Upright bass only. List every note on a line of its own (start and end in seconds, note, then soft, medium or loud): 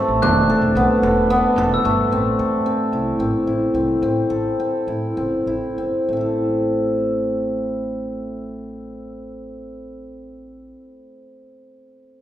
0.08 0.19 A1 medium
0.23 0.53 E1 loud
0.62 0.72 E1 medium
0.75 0.86 B1 medium
1.02 1.44 E1 medium
1.56 1.77 E1 loud
1.85 2.05 G1 medium
2.11 2.32 A1 medium
2.39 2.59 E2 medium
2.92 3.13 C2 medium
3.19 3.29 A1 medium
3.47 3.67 A1 medium
3.74 3.95 C2 medium
4.02 4.23 A1 medium
4.30 4.51 A1 medium
4.87 5.09 A2 medium
5.17 5.39 F#1 medium
5.46 5.58 A1 medium
5.76 5.88 F#1 medium
6.08 10.73 A1 medium